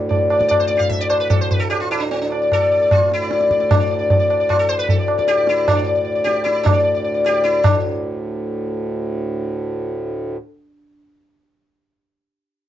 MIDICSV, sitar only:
0, 0, Header, 1, 2, 480
1, 0, Start_track
1, 0, Tempo, 398142
1, 2059, Time_signature, 5, 2, 24, 8
1, 6841, Tempo, 388098
1, 15509, End_track
2, 0, Start_track
2, 0, Title_t, "Sitar"
2, 0, Program_c, 0, 104
2, 0, Note_on_c, 0, 62, 78
2, 110, Note_on_c, 0, 74, 41
2, 318, Note_off_c, 0, 62, 0
2, 342, Note_off_c, 0, 74, 0
2, 362, Note_on_c, 0, 74, 40
2, 457, Note_off_c, 0, 74, 0
2, 472, Note_on_c, 0, 74, 42
2, 570, Note_off_c, 0, 74, 0
2, 584, Note_on_c, 0, 74, 106
2, 715, Note_off_c, 0, 74, 0
2, 719, Note_on_c, 0, 72, 99
2, 807, Note_off_c, 0, 72, 0
2, 811, Note_on_c, 0, 74, 106
2, 924, Note_on_c, 0, 67, 78
2, 925, Note_off_c, 0, 74, 0
2, 954, Note_on_c, 0, 77, 105
2, 963, Note_off_c, 0, 67, 0
2, 1073, Note_off_c, 0, 77, 0
2, 1077, Note_on_c, 0, 76, 111
2, 1210, Note_off_c, 0, 76, 0
2, 1214, Note_on_c, 0, 74, 108
2, 1315, Note_off_c, 0, 74, 0
2, 1320, Note_on_c, 0, 72, 101
2, 1441, Note_off_c, 0, 72, 0
2, 1446, Note_on_c, 0, 71, 95
2, 1560, Note_off_c, 0, 71, 0
2, 1565, Note_on_c, 0, 69, 101
2, 1695, Note_off_c, 0, 69, 0
2, 1700, Note_on_c, 0, 72, 93
2, 1811, Note_off_c, 0, 72, 0
2, 1816, Note_on_c, 0, 71, 92
2, 1924, Note_on_c, 0, 69, 99
2, 1942, Note_off_c, 0, 71, 0
2, 2042, Note_off_c, 0, 69, 0
2, 2047, Note_on_c, 0, 67, 96
2, 2165, Note_off_c, 0, 67, 0
2, 2169, Note_on_c, 0, 65, 90
2, 2297, Note_off_c, 0, 65, 0
2, 2302, Note_on_c, 0, 64, 92
2, 2410, Note_on_c, 0, 62, 85
2, 2425, Note_off_c, 0, 64, 0
2, 2539, Note_off_c, 0, 62, 0
2, 2544, Note_on_c, 0, 60, 85
2, 2665, Note_off_c, 0, 60, 0
2, 2670, Note_on_c, 0, 62, 71
2, 2779, Note_off_c, 0, 62, 0
2, 2794, Note_on_c, 0, 74, 42
2, 2901, Note_off_c, 0, 74, 0
2, 2915, Note_on_c, 0, 74, 42
2, 3053, Note_on_c, 0, 69, 111
2, 3124, Note_off_c, 0, 74, 0
2, 3138, Note_on_c, 0, 74, 44
2, 3254, Note_off_c, 0, 74, 0
2, 3268, Note_on_c, 0, 74, 41
2, 3379, Note_off_c, 0, 74, 0
2, 3393, Note_on_c, 0, 74, 42
2, 3516, Note_off_c, 0, 69, 0
2, 3521, Note_on_c, 0, 65, 95
2, 3612, Note_off_c, 0, 74, 0
2, 3759, Note_off_c, 0, 65, 0
2, 3779, Note_on_c, 0, 64, 103
2, 3881, Note_on_c, 0, 74, 47
2, 3991, Note_off_c, 0, 74, 0
2, 4005, Note_on_c, 0, 74, 45
2, 4085, Note_off_c, 0, 74, 0
2, 4100, Note_on_c, 0, 74, 43
2, 4216, Note_off_c, 0, 74, 0
2, 4230, Note_on_c, 0, 74, 45
2, 4327, Note_off_c, 0, 74, 0
2, 4342, Note_on_c, 0, 74, 43
2, 4468, Note_on_c, 0, 62, 85
2, 4501, Note_off_c, 0, 64, 0
2, 4565, Note_off_c, 0, 74, 0
2, 4583, Note_on_c, 0, 74, 43
2, 4695, Note_off_c, 0, 74, 0
2, 4709, Note_on_c, 0, 74, 46
2, 4795, Note_off_c, 0, 74, 0
2, 4809, Note_on_c, 0, 74, 44
2, 4929, Note_off_c, 0, 74, 0
2, 4943, Note_on_c, 0, 74, 44
2, 5041, Note_off_c, 0, 74, 0
2, 5055, Note_on_c, 0, 74, 43
2, 5133, Note_off_c, 0, 62, 0
2, 5167, Note_off_c, 0, 74, 0
2, 5181, Note_on_c, 0, 74, 46
2, 5290, Note_off_c, 0, 74, 0
2, 5305, Note_on_c, 0, 74, 47
2, 5414, Note_on_c, 0, 65, 89
2, 5523, Note_off_c, 0, 74, 0
2, 5531, Note_off_c, 0, 65, 0
2, 5536, Note_on_c, 0, 69, 99
2, 5651, Note_on_c, 0, 72, 106
2, 5658, Note_off_c, 0, 69, 0
2, 5769, Note_off_c, 0, 72, 0
2, 5773, Note_on_c, 0, 71, 105
2, 5896, Note_off_c, 0, 71, 0
2, 5902, Note_on_c, 0, 69, 86
2, 6008, Note_off_c, 0, 69, 0
2, 6016, Note_on_c, 0, 74, 44
2, 6229, Note_off_c, 0, 74, 0
2, 6243, Note_on_c, 0, 74, 42
2, 6363, Note_on_c, 0, 67, 117
2, 6462, Note_off_c, 0, 74, 0
2, 6477, Note_on_c, 0, 74, 41
2, 6610, Note_off_c, 0, 67, 0
2, 6617, Note_on_c, 0, 64, 95
2, 6696, Note_off_c, 0, 74, 0
2, 6710, Note_on_c, 0, 74, 43
2, 6847, Note_on_c, 0, 62, 84
2, 6856, Note_off_c, 0, 64, 0
2, 6920, Note_off_c, 0, 74, 0
2, 6935, Note_on_c, 0, 74, 44
2, 7057, Note_off_c, 0, 74, 0
2, 7071, Note_off_c, 0, 62, 0
2, 7072, Note_on_c, 0, 74, 44
2, 7168, Note_off_c, 0, 74, 0
2, 7182, Note_on_c, 0, 74, 43
2, 7285, Note_off_c, 0, 74, 0
2, 7300, Note_on_c, 0, 74, 43
2, 7418, Note_off_c, 0, 74, 0
2, 7433, Note_on_c, 0, 74, 39
2, 7544, Note_on_c, 0, 67, 109
2, 7642, Note_off_c, 0, 74, 0
2, 7657, Note_on_c, 0, 74, 45
2, 7781, Note_off_c, 0, 67, 0
2, 7786, Note_on_c, 0, 64, 91
2, 7891, Note_off_c, 0, 74, 0
2, 7906, Note_on_c, 0, 74, 40
2, 8029, Note_on_c, 0, 62, 77
2, 8049, Note_off_c, 0, 64, 0
2, 8134, Note_off_c, 0, 74, 0
2, 8148, Note_on_c, 0, 74, 40
2, 8259, Note_off_c, 0, 74, 0
2, 8266, Note_off_c, 0, 62, 0
2, 8274, Note_on_c, 0, 74, 41
2, 8399, Note_off_c, 0, 74, 0
2, 8414, Note_on_c, 0, 74, 44
2, 8520, Note_off_c, 0, 74, 0
2, 8534, Note_on_c, 0, 74, 44
2, 8642, Note_off_c, 0, 74, 0
2, 8656, Note_on_c, 0, 74, 41
2, 8800, Note_on_c, 0, 67, 114
2, 8883, Note_off_c, 0, 74, 0
2, 8898, Note_on_c, 0, 74, 42
2, 9015, Note_off_c, 0, 67, 0
2, 9020, Note_on_c, 0, 64, 96
2, 9124, Note_off_c, 0, 74, 0
2, 9140, Note_on_c, 0, 74, 40
2, 9268, Note_on_c, 0, 62, 93
2, 9269, Note_off_c, 0, 64, 0
2, 9365, Note_off_c, 0, 74, 0
2, 13469, Note_off_c, 0, 62, 0
2, 15509, End_track
0, 0, End_of_file